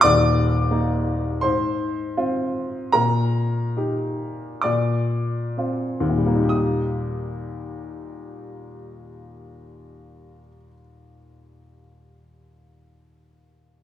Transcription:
\new Staff \with { instrumentName = "Grand piano" } { \time 4/4 \key ees \major \tempo 4 = 33 << { <d'' d'''>4 <c'' c'''>4 <bes' bes''>4 <d'' d'''>4 | <ees, bes, g bes ees' g' ees'''>1 | } \\ { <ees,, ees,>8 <bes ees'>8 aes,8 <c' f'>8 bes,8 <ees' g'>8 bes,8 <c' f'>8 | r1 | } >> }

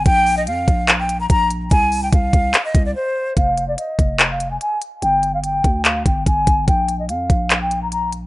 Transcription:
<<
  \new Staff \with { instrumentName = "Flute" } { \time 4/4 \key f \dorian \tempo 4 = 145 g''8. ees''16 f''4~ f''16 g''8 bes''16 bes''8 r8 | aes''8. g''16 f''4~ f''16 ees''8 d''16 c''4 | f''8. d''16 ees''4~ ees''16 f''8 aes''16 aes''8 r8 | g''8. f''16 g''4 f''8 g''8 aes''4 |
g''8. ees''16 f''4~ f''16 g''8 bes''16 bes''8 r8 | }
  \new Staff \with { instrumentName = "808-style bass" } { \clef bass \time 4/4 \key f \dorian bes,,4 f,8 bes,,4. bes,,4 | c,4 c,8 c,8 r8 c,8 r4 | f,,4 r8 f,,4. r4 | g,,4. d,4 g,,8 g,,8 g,,8 |
bes,,4 f,8 bes,,2~ bes,,8 | }
  \new DrumStaff \with { instrumentName = "Drums" } \drummode { \time 4/4 <hh bd>8 hho8 hh8 <hh bd>8 <hc hh>8 hh8 <hh bd>8 hh8 | <hh bd>8 hho8 <hh bd>8 <hh bd>8 <hc hh>8 <hh bd>8 r4 | <hh bd>8 hh8 hh8 <hh bd>8 <hc hh>8 hh8 hh8 hh8 | hh8 hh8 hh8 <hh bd>8 <hc hh>8 <hh bd>8 <hh bd>8 <hh bd>8 |
<hh bd>8 hh8 hh8 <hh bd>8 <hc hh>8 hh8 hh8 hh8 | }
>>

